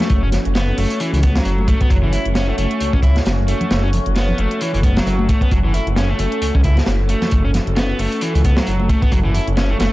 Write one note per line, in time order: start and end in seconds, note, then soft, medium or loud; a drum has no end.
0.00 0.22 A3 medium
0.00 9.93 A3 medium
0.00 9.93 C#4 medium
0.00 9.93 F#4 medium
0.00 5.50 C#5 medium
0.00 snare soft
0.00 closed hi-hat soft
0.00 low conga medium
0.10 0.38 F#1 loud
0.10 kick loud
0.10 closed hi-hat soft
0.10 closed hi-hat medium
0.23 0.28 C#4 medium
0.32 snare soft
0.32 closed hi-hat medium
0.32 low conga medium
0.45 0.72 F#1 loud
0.45 closed hi-hat soft
0.55 0.77 B3 loud
0.55 snare loud
0.55 closed hi-hat soft
0.55 closed hi-hat medium
0.78 0.86 F#1 medium
0.78 0.99 A3 medium
0.78 closed hi-hat medium
0.78 open hi-hat medium
0.90 closed hi-hat soft
1.00 1.12 E3 loud
1.00 closed hi-hat medium
1.00 closed hi-hat soft
1.13 1.40 C#2 loud
1.13 1.18 E3 loud
1.13 closed hi-hat soft
1.23 1.34 B3 medium
1.23 kick loud
1.23 closed hi-hat medium
1.23 high conga medium
1.35 1.67 F#3 medium
1.35 snare loud
1.35 closed hi-hat soft
1.45 1.73 F#1 medium
1.45 closed hi-hat medium
1.45 closed hi-hat soft
1.58 high conga medium
1.68 1.79 A3 medium
1.68 kick medium
1.68 closed hi-hat medium
1.81 1.90 B3 loud
1.81 kick medium
1.81 closed hi-hat soft
1.90 2.18 F#1 loud
1.90 1.97 F#3 medium
1.90 kick loud
1.90 closed hi-hat soft
1.90 closed hi-hat medium
2.03 2.12 E3 loud
2.13 2.24 E4 loud
2.13 closed hi-hat medium
2.26 2.53 F#1 loud
2.26 closed hi-hat soft
2.35 2.47 C#4 medium
2.35 snare loud
2.35 closed hi-hat soft
2.35 closed hi-hat medium
2.48 2.57 A3 medium
2.48 high conga medium
2.58 2.66 F#1 medium
2.58 2.92 A3 medium
2.58 closed hi-hat medium
2.71 closed hi-hat soft
2.80 2.91 C#2 soft
2.80 closed hi-hat soft
2.80 closed hi-hat medium
2.93 3.20 C#2 loud
2.93 2.99 C#4 medium
2.93 kick medium
3.03 3.15 E4 loud
3.03 kick medium
3.03 closed hi-hat medium
3.16 snare medium
3.16 closed hi-hat soft
3.25 3.54 F#1 medium
3.25 snare loud
3.25 closed hi-hat soft
3.25 closed hi-hat medium
3.48 3.83 A3 medium
3.48 closed hi-hat medium
3.61 closed hi-hat soft
3.61 low conga medium
3.71 3.99 F#1 loud
3.71 snare loud
3.71 closed hi-hat soft
3.71 closed hi-hat medium
3.84 3.89 C#4 medium
3.93 closed hi-hat medium
3.93 low conga medium
4.06 4.33 F#1 loud
4.06 closed hi-hat soft
4.16 4.38 B3 loud
4.16 snare loud
4.16 closed hi-hat soft
4.16 closed hi-hat medium
4.29 low conga medium
4.38 4.47 F#1 medium
4.38 4.60 A3 medium
4.38 closed hi-hat medium
4.51 closed hi-hat soft
4.61 4.73 E3 medium
4.61 closed hi-hat soft
4.61 closed hi-hat medium
4.74 5.01 F#1 medium
4.74 4.79 E3 medium
4.74 closed hi-hat soft
4.83 4.95 B3 medium
4.83 kick medium
4.83 closed hi-hat medium
4.83 high conga medium
4.96 5.28 F#3 medium
4.96 snare loud
4.96 closed hi-hat soft
5.06 5.34 F#1 medium
5.06 closed hi-hat soft
5.06 closed hi-hat medium
5.19 high conga loud
5.29 5.40 A3 medium
5.29 kick loud
5.29 closed hi-hat medium
5.41 5.50 B3 medium
5.41 kick medium
5.41 closed hi-hat soft
5.51 5.80 F#1 loud
5.51 5.58 F#3 medium
5.51 9.93 A4 medium
5.51 kick loud
5.51 closed hi-hat medium
5.51 closed hi-hat soft
5.64 5.74 E3 loud
5.74 5.85 E4 loud
5.74 closed hi-hat medium
5.87 6.13 F#1 loud
5.87 closed hi-hat soft
5.96 6.08 C#4 medium
5.96 snare loud
5.96 closed hi-hat medium
5.96 closed hi-hat soft
6.09 6.18 A3 medium
6.09 high conga medium
6.19 6.27 F#1 medium
6.19 6.54 A3 medium
6.19 closed hi-hat medium
6.32 closed hi-hat soft
6.42 6.52 C#2 soft
6.42 closed hi-hat soft
6.42 closed hi-hat medium
6.55 6.81 C#2 loud
6.55 6.60 C#4 medium
6.55 kick loud
6.64 6.76 E4 medium
6.64 kick loud
6.64 closed hi-hat medium
6.77 snare medium
6.77 closed hi-hat soft
6.86 7.15 F#1 medium
6.86 snare loud
6.86 closed hi-hat medium
6.86 closed hi-hat soft
7.09 7.43 A3 medium
7.09 closed hi-hat medium
7.22 snare soft
7.22 closed hi-hat soft
7.22 low conga medium
7.31 7.60 F#1 loud
7.31 kick loud
7.31 closed hi-hat medium
7.31 closed hi-hat soft
7.45 7.50 C#4 medium
7.54 snare medium
7.54 closed hi-hat medium
7.54 low conga medium
7.67 7.94 F#1 loud
7.67 closed hi-hat soft
7.76 7.98 B3 loud
7.76 snare loud
7.76 closed hi-hat medium
7.76 closed hi-hat soft
7.99 8.08 F#1 medium
7.99 8.21 A3 medium
7.99 closed hi-hat medium
7.99 open hi-hat medium
8.12 closed hi-hat soft
8.21 8.33 E3 loud
8.21 closed hi-hat medium
8.21 closed hi-hat soft
8.35 8.62 C#2 loud
8.35 8.40 E3 loud
8.35 closed hi-hat soft
8.44 8.56 B3 medium
8.44 kick loud
8.44 closed hi-hat medium
8.44 high conga medium
8.57 8.89 F#3 medium
8.57 snare loud
8.57 closed hi-hat soft
8.67 8.95 F#1 medium
8.67 closed hi-hat medium
8.67 closed hi-hat soft
8.80 high conga medium
8.89 9.01 A3 medium
8.89 kick loud
8.89 closed hi-hat medium
9.02 9.11 B3 loud
9.02 kick loud
9.02 closed hi-hat soft
9.12 9.40 F#1 loud
9.12 9.19 F#3 medium
9.12 kick loud
9.12 closed hi-hat medium
9.12 closed hi-hat soft
9.25 9.34 E3 loud
9.34 9.46 E4 loud
9.34 closed hi-hat medium
9.47 9.74 F#1 loud
9.47 closed hi-hat soft
9.57 9.69 C#4 medium
9.57 snare loud
9.57 closed hi-hat medium
9.57 closed hi-hat soft
9.70 9.78 A3 medium
9.70 high conga medium
9.79 9.88 F#1 medium
9.79 9.93 A3 medium
9.79 snare loud
9.79 closed hi-hat medium